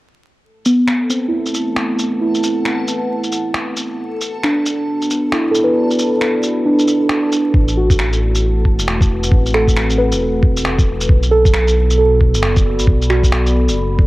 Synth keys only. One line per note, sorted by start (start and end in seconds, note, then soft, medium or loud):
0.66 1.87 B3 medium
1.10 2.32 C4 medium
1.28 2.20 E4 soft
2.21 3.43 E4 soft
4.44 5.65 D4 medium
5.33 6.55 E4 medium
5.51 6.66 A4 medium
5.64 6.81 B4 medium
6.65 7.73 D4 medium
7.77 8.99 F#4 medium
9.54 10.76 A4 medium
9.98 11.20 B4 medium
11.31 11.97 A4 medium
11.98 13.20 A4 medium
13.10 14.07 F#4 medium